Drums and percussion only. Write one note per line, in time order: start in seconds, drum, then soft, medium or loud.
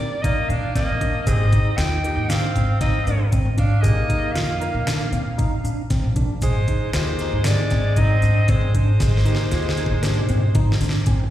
0.24 kick loud
0.24 closed hi-hat medium
0.50 closed hi-hat medium
0.76 kick medium
0.76 snare soft
0.76 closed hi-hat medium
1.01 kick medium
1.01 closed hi-hat medium
1.27 kick loud
1.27 closed hi-hat medium
1.27 shaker medium
1.52 kick medium
1.52 closed hi-hat medium
1.78 snare loud
1.78 closed hi-hat medium
2.04 closed hi-hat medium
2.30 snare loud
2.30 closed hi-hat medium
2.30 shaker medium
2.56 kick medium
2.56 closed hi-hat medium
2.56 shaker soft
2.81 kick loud
2.81 snare soft
2.81 closed hi-hat medium
3.07 closed hi-hat medium
3.07 shaker soft
3.32 kick medium
3.32 closed hi-hat medium
3.32 shaker soft
3.58 kick medium
3.58 closed hi-hat medium
3.84 kick loud
3.84 closed hi-hat medium
3.84 shaker soft
4.10 kick medium
4.10 closed hi-hat medium
4.36 snare loud
4.36 closed hi-hat medium
4.61 closed hi-hat soft
4.87 snare loud
4.87 closed hi-hat medium
4.87 shaker soft
5.13 closed hi-hat medium
5.13 shaker soft
5.39 kick loud
5.39 closed hi-hat medium
5.65 closed hi-hat medium
5.65 shaker soft
5.90 kick medium
5.90 snare soft
5.90 closed hi-hat medium
5.90 shaker soft
6.16 kick medium
6.16 closed hi-hat medium
6.42 kick loud
6.42 closed hi-hat medium
6.42 shaker medium
6.68 kick medium
6.68 closed hi-hat medium
6.93 snare loud
6.93 closed hi-hat medium
7.19 snare soft
7.19 closed hi-hat medium
7.44 snare loud
7.44 closed hi-hat medium
7.44 shaker soft
7.70 kick medium
7.70 snare soft
7.70 closed hi-hat medium
7.70 shaker soft
7.96 kick loud
7.96 closed hi-hat medium
8.22 closed hi-hat soft
8.22 shaker soft
8.48 kick loud
8.48 closed hi-hat medium
8.48 shaker soft
8.75 kick medium
8.75 closed hi-hat medium
9.00 kick loud
9.00 snare medium
9.00 closed hi-hat medium
9.00 shaker medium
9.17 snare medium
9.26 closed hi-hat medium
9.26 shaker soft
9.35 snare medium
9.51 snare medium
9.51 closed hi-hat medium
9.51 shaker soft
9.69 snare medium
9.77 closed hi-hat medium
9.77 shaker soft
9.86 kick medium
10.03 snare medium
10.03 closed hi-hat medium
10.03 shaker soft
10.20 mid tom medium
10.29 closed hi-hat medium
10.29 shaker soft
10.37 mid tom medium
10.55 kick loud
10.55 closed hi-hat medium
10.55 mid tom medium
10.72 snare medium
10.81 closed hi-hat medium
10.81 shaker soft
10.89 snare medium
11.06 kick medium
11.06 closed hi-hat medium
11.06 shaker soft
11.24 floor tom medium